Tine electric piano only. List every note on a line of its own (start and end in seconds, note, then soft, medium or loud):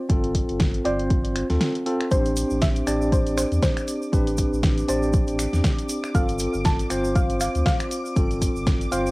0.09 0.82 C4 medium
0.09 0.83 F4 medium
0.09 0.83 A4 medium
0.85 1.47 C4 medium
0.85 1.47 F4 medium
0.85 1.47 C5 loud
1.50 1.83 C4 medium
1.50 1.84 F4 medium
1.50 1.84 A4 medium
1.86 2.09 C4 medium
1.86 2.09 F4 medium
1.86 2.09 A4 loud
2.11 2.84 C4 medium
2.11 2.84 D4 medium
2.11 2.84 G4 medium
2.11 2.85 C5 medium
2.86 4.10 C4 medium
2.86 4.10 D4 medium
2.86 4.11 G4 medium
2.86 4.11 D5 loud
4.12 4.86 C4 medium
4.12 4.86 D4 medium
4.12 4.86 G4 medium
4.12 4.86 B4 medium
4.88 6.12 C4 medium
4.88 6.12 D4 medium
4.88 6.12 G4 medium
4.88 6.12 D5 loud
6.14 6.87 C4 medium
6.14 6.88 F4 medium
6.14 6.88 A4 medium
6.90 8.14 C4 loud
6.90 8.14 F4 medium
6.90 8.14 C5 loud
8.16 8.89 C4 medium
8.16 8.89 F4 medium
8.16 8.90 A4 medium
8.91 9.11 C4 medium
8.91 9.11 F4 medium
8.91 9.11 C5 loud